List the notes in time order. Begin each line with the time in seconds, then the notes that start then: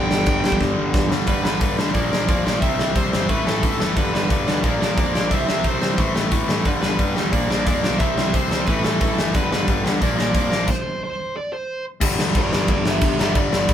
Already playing: G2 D3 G3 D4 G5
0.11 G1, snare
0.26 G1, kick, crash
0.44 G1, snare
0.52 kick
0.61 G1, kick, snare
0.79 G1
0.94 G1, kick, snare
1.10 G2 D3 G3, snare
1.27 G1 G2 D3 G3 B4, kick, open hi-hat
1.43 G2 D3 G3 B4, snare
1.59 G1 G2 D3 G3, kick, open hi-hat
1.78 D2 G2 D3 G3, snare
1.94 A#1 A#2 F3 A#3 D5, kick, open hi-hat
2.12 A#1 A#2 F3 A#3, snare
2.29 F2 A#2 F3 A#3 D5, kick, open hi-hat
2.45 A#1 A#2 F3 A#3, snare
2.61 C2 C3 G3 C4 E5, kick, open hi-hat
2.78 C2 C3 G3 C4, snare
2.95 C2 C3 G3 C4 C5, kick, open hi-hat
3.13 G1 C3 G3 C4, snare
3.29 A1 A2 E3 A3 B4, kick, open hi-hat
3.45 A1 A2 E3 A3 A4, snare
3.61 A1 A2 E3 A3, kick, open hi-hat
3.80 F#1 A2 E3 A3, snare
3.96 G1 G2 D3 G3 B4, kick, open hi-hat
4.13 G2 D3 G3 B4, snare
4.29 G1 G2 D3 G3, kick, open hi-hat
4.47 D2 G2 D3 G3, snare
4.63 A#1 A#2 F3 A#3 D5, kick, open hi-hat
4.80 A#1 A#2 F3 A#3, snare
4.97 F2 A#2 F3 A#3 D5, kick, open hi-hat
5.13 A#1 A#2 F3 A#3, snare
5.30 C2 C3 G3 C4, kick, open hi-hat
5.34 E5
5.47 C2 C3 G3 C4, snare
5.64 C2 C3 G3 C4, kick, open hi-hat
5.68 C5
5.81 C2 C3 G3 C4, snare
5.97 A1 A2 E3 A3, kick, open hi-hat
6.14 A1 A2 E3 A3, snare
6.31 A1 A2 E3 A3, kick, open hi-hat
6.48 A1 A2 E3 A3, snare
6.65 G1 G2 D3 G3 B4, kick, open hi-hat
6.81 G2 D3 G3 B4, snare
6.99 G1 G2 D3 G3, kick, open hi-hat
7.16 D2 G2 D3 G3, snare
7.32 A#1 A#2 F3 A#3 D5, kick, open hi-hat
7.50 A#1 A#2 F3 A#3, snare
7.66 F2 A#2 F3 A#3 D5, kick, open hi-hat
7.83 B1 A#2 F3 A#3, snare
7.98 C2 C3 G3 C4 E5, kick, open hi-hat
8.17 C2 C3 G3 C4, snare
8.33 C2 C3 G3 C4 C5, kick, open hi-hat
8.50 C2 C3 G3 C4, snare
8.66 A1 A2 E3 A3 B4, kick, open hi-hat
8.84 A1 A2 E3 A3 A4, snare
9.01 A1 A2 E3 A3, kick, open hi-hat
9.18 F#1 A2 E3 A3, snare
9.34 G1 G2 D3 G3 B4, kick, open hi-hat
9.51 G2 D3 G3 B4, snare
9.68 G1 G2 D3 G3, kick, open hi-hat
9.85 D2 G2 D3 G3, snare
10.01 A#1 A#2 F3 A#3 D5, kick, open hi-hat
10.16 A#1 A#2 F3 A#3, snare
10.33 F2 A#2 F3 A#3, kick, open hi-hat
10.37 D5
10.50 A#1 A#2 F3 A#3, snare
10.68 C5, kick, crash
11.04 C5
11.37 D5
11.53 C5
12.00 G1 G2 D3 G3, kick, crash
12.19 D2, snare
12.35 G1 B4 D5, kick, crash
12.53 G1 B4 D5, snare
12.68 G1 B4 D5, kick, crash
12.85 G1 G4 E5, snare
13.01 G1 G4, kick, crash
13.06 E5
13.18 G1 G2 D3 G3 G4, snare
13.22 E5
13.35 G1 G2 D3 G3 D5, kick, crash
13.53 G1, snare
13.69 G1, kick, crash